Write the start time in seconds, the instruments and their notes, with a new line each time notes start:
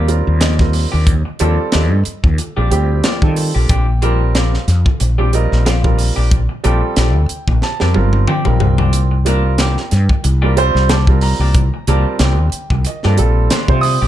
Already playing: fretless electric bass D#2, grand piano F5
0.08 grand piano G3 C4 F4 A#4, muted clean electric guitar stroke, closed hi-hat
0.27 fretless electric bass D#2
0.40 clean electric guitar F3 A#3 D4 G4, grand piano D#5, snare, closed hi-hat
0.59 grand piano G3 C4 F4 A#4, muted clean electric guitar stroke, kick, snare
0.73 muted clean electric guitar stroke, open hi-hat
0.92 fretless electric bass D#2, clean electric guitar A#3 D4 G4
1.07 kick, closed hi-hat
1.25 muted clean electric guitar stroke
1.39 fretless electric bass D#2, clean electric guitar F3 A#3 D4 G4, grand piano G3 C4 F4 A4 D5, closed hi-hat
1.58 muted clean electric guitar stroke
1.72 fretless electric bass D#2, clean electric guitar F3 A#3 D4 G4, grand piano D#5, snare, closed hi-hat
1.90 fretless electric bass G2, muted clean electric guitar stroke
2.05 muted fretless electric bass stroke, closed hi-hat
2.24 fretless electric bass D#2, grand piano F4 A#4, muted clean electric guitar stroke, kick
2.38 grand piano F4 A4, muted clean electric guitar stroke, closed hi-hat
2.57 fretless electric bass A#1, clean electric guitar F3 A#3 D4 G4, grand piano G3 C4 F4 G4
2.71 fretless electric bass D2, grand piano G3 C4 F4 G4 G5, muted clean electric guitar stroke, closed hi-hat
3.04 clean electric guitar F3 A#3 D4 G4, snare, closed hi-hat
3.22 fretless electric bass D#3, grand piano G3 C4 F4 A4, muted clean electric guitar stroke, kick
3.36 muted clean electric guitar stroke, open hi-hat
3.55 fretless electric bass A#1, clean electric guitar A#3 D4 G4
3.69 fretless electric bass A#1, clean electric guitar F3 C4 D4 G4, grand piano G5, kick, closed hi-hat
3.88 muted clean electric guitar stroke
4.02 clean electric guitar F3 C4 D4 G4, grand piano G3 C4 F4 A#4, closed hi-hat
4.20 muted clean electric guitar stroke
4.35 clean electric guitar F3 C4 D4 G4, grand piano F5, snare, closed hi-hat
4.53 muted clean electric guitar stroke, snare
4.67 fretless electric bass F2, snare, closed hi-hat
4.86 grand piano F4 A4, muted clean electric guitar stroke, kick
5.00 fretless electric bass A#1, grand piano F4 C5, muted clean electric guitar stroke, closed hi-hat
5.18 clean electric guitar F3 C4 D4 G4, grand piano G3 C4 F4 G4
5.33 grand piano G3 C4 F4 A#4 D#5, muted clean electric guitar stroke, closed hi-hat
5.52 fretless electric bass A#1, snare
5.65 clean electric guitar F3 C4 D4 G4, grand piano F5, snare, closed hi-hat
5.83 grand piano G3 C4 F4 A#4, muted clean electric guitar stroke, kick
5.98 muted clean electric guitar stroke, open hi-hat
6.16 fretless electric bass A#1, clean electric guitar C4 D4 G4
6.31 kick, closed hi-hat
6.49 muted clean electric guitar stroke
6.64 fretless electric bass A#1, clean electric guitar F3 C4 D4 G4, grand piano G3 C4 F4 A4 G5, closed hi-hat
6.83 muted clean electric guitar stroke
6.96 fretless electric bass A#1, clean electric guitar F3 C4 D4 G4, snare, closed hi-hat
7.15 fretless electric bass D2, muted clean electric guitar stroke
7.29 closed hi-hat
7.48 fretless electric bass A#1, grand piano F4 A#4, muted clean electric guitar stroke, kick
7.62 grand piano F4 G4 A5, muted clean electric guitar stroke, snare
7.80 fretless electric bass F2, clean electric guitar F3 C4 D4 G4, grand piano G3 C4 F4 A#4, snare
7.94 fretless electric bass G1, grand piano G3 C4 F4 A#4, muted clean electric guitar stroke, high tom
8.13 high tom
8.28 clean electric guitar F3 C4 D4 G4, grand piano G5, mid tom
8.45 fretless electric bass A#1, grand piano G3 C4 F4 A#4, muted clean electric guitar stroke, mid tom
8.60 fretless electric bass C2, grand piano G3 C4 F4 A#4, muted clean electric guitar stroke, floor tom
8.78 clean electric guitar A#3 D4 G4, floor tom
8.93 closed hi-hat
9.11 muted clean electric guitar stroke
9.25 clean electric guitar D#3 A#3 D4 G4, grand piano G3 C4 F4 A#4 F5, closed hi-hat
9.44 muted clean electric guitar stroke
9.58 clean electric guitar D#3 A#3 D4 G4, grand piano G5, snare, closed hi-hat
9.77 muted clean electric guitar stroke, snare
9.91 fretless electric bass G2, snare, closed hi-hat
10.09 grand piano F4 A#4, muted clean electric guitar stroke, kick
10.23 fretless electric bass C2, grand piano F4 G4, muted clean electric guitar stroke, closed hi-hat
10.42 clean electric guitar D#3 A#3 D4 G4, grand piano G3 C4 F4 A#4
10.57 grand piano G3 C4 F4 C5, muted clean electric guitar stroke, closed hi-hat
10.75 fretless electric bass C2, snare
10.89 clean electric guitar D#3 A#3 D4 G4, grand piano A5, snare, closed hi-hat
11.07 grand piano G3 C4 F4 A#4, muted clean electric guitar stroke, kick
11.21 grand piano A#5, muted clean electric guitar stroke, open hi-hat
11.39 fretless electric bass C2, clean electric guitar A#3 D4 G4
11.54 kick, closed hi-hat
11.74 muted clean electric guitar stroke
11.87 fretless electric bass C2, clean electric guitar D#3 A#3 D4 G4, grand piano G3 C4 F4 A#4 A5, closed hi-hat
12.07 muted clean electric guitar stroke
12.19 fretless electric bass C2, clean electric guitar D#3 A#3 D4 G4, grand piano G5, snare, closed hi-hat
12.39 fretless electric bass D#2, muted clean electric guitar stroke
12.52 muted fretless electric bass stroke, closed hi-hat
12.70 fretless electric bass C2, grand piano F4 A#4, muted clean electric guitar stroke, kick
12.85 grand piano F4 A#4 D#5, muted clean electric guitar stroke, closed hi-hat
13.03 fretless electric bass G2, clean electric guitar D#3 A#3 D4 G4, grand piano G3 C4 F4 A4, snare
13.18 fretless electric bass A#1, grand piano G3 C4 F4 A4, muted clean electric guitar stroke, closed hi-hat
13.50 clean electric guitar D#3 A#3 D4 G4, grand piano C6, snare, closed hi-hat
13.68 fretless electric bass C3, grand piano G3 C4 F4 C5, muted clean electric guitar stroke, kick
13.81 grand piano D#6, muted clean electric guitar stroke, open hi-hat
14.02 fretless electric bass A#1, clean electric guitar A#3 D4 G4